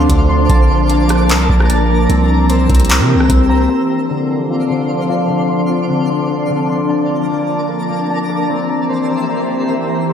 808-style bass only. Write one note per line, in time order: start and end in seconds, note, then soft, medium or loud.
0.09 0.48 D2 loud
0.50 1.31 A#1 loud
1.30 1.49 C2 loud
1.50 2.07 A#1 loud
2.10 2.67 C2 loud
2.69 3.01 C2 loud
3.00 3.16 C3 loud
3.15 3.29 C2 loud
3.29 3.68 C2 loud